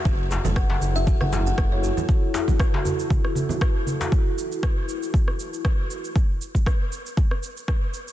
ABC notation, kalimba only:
X:1
M:4/4
L:1/16
Q:"Swing 16ths" 1/4=118
K:F#m
V:1 name="Kalimba"
F z2 A f z2 e F f A f f c F z | z16 | z16 | z16 |]